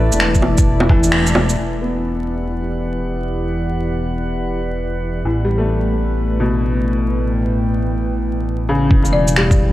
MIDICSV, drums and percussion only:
0, 0, Header, 1, 2, 480
1, 0, Start_track
1, 0, Key_signature, 1, "minor"
1, 0, Tempo, 458015
1, 1657, Time_signature, 4, 2, 24, 8
1, 10193, End_track
2, 0, Start_track
2, 0, Title_t, "Drums"
2, 129, Note_on_c, 9, 82, 59
2, 210, Note_on_c, 9, 26, 97
2, 234, Note_off_c, 9, 82, 0
2, 315, Note_off_c, 9, 26, 0
2, 365, Note_on_c, 9, 82, 32
2, 370, Note_on_c, 9, 36, 62
2, 444, Note_on_c, 9, 61, 39
2, 470, Note_off_c, 9, 82, 0
2, 475, Note_off_c, 9, 36, 0
2, 549, Note_off_c, 9, 61, 0
2, 604, Note_on_c, 9, 82, 57
2, 611, Note_on_c, 9, 36, 104
2, 709, Note_off_c, 9, 82, 0
2, 716, Note_off_c, 9, 36, 0
2, 841, Note_on_c, 9, 61, 67
2, 937, Note_on_c, 9, 36, 107
2, 946, Note_off_c, 9, 61, 0
2, 1041, Note_off_c, 9, 36, 0
2, 1084, Note_on_c, 9, 82, 58
2, 1172, Note_on_c, 9, 26, 101
2, 1189, Note_off_c, 9, 82, 0
2, 1277, Note_off_c, 9, 26, 0
2, 1326, Note_on_c, 9, 82, 47
2, 1415, Note_on_c, 9, 61, 70
2, 1431, Note_off_c, 9, 82, 0
2, 1519, Note_off_c, 9, 61, 0
2, 1566, Note_on_c, 9, 82, 55
2, 1670, Note_off_c, 9, 82, 0
2, 9335, Note_on_c, 9, 36, 121
2, 9440, Note_off_c, 9, 36, 0
2, 9487, Note_on_c, 9, 82, 32
2, 9592, Note_off_c, 9, 82, 0
2, 9723, Note_on_c, 9, 82, 60
2, 9814, Note_on_c, 9, 26, 105
2, 9828, Note_off_c, 9, 82, 0
2, 9919, Note_off_c, 9, 26, 0
2, 9966, Note_on_c, 9, 36, 110
2, 9970, Note_on_c, 9, 82, 33
2, 10071, Note_off_c, 9, 36, 0
2, 10074, Note_off_c, 9, 82, 0
2, 10193, End_track
0, 0, End_of_file